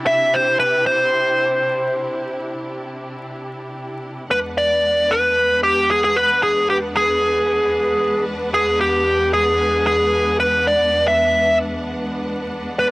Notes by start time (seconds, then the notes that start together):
Already playing: C3 D4 E4 G4
0.07 E5
0.34 C5
0.60 B4
0.86 C5
4.30 E2 G#3 B3 D4 B4 F#5
4.58 D5
5.11 B4
5.63 G4
5.90 G#4
6.04 G#4
6.16 B4
6.43 G#4
6.70 G4
6.96 G#4
8.54 G#4
8.81 G4
9.34 G#4
9.87 G#4
10.40 B4
10.67 D5
11.08 E5
12.79 B4 D5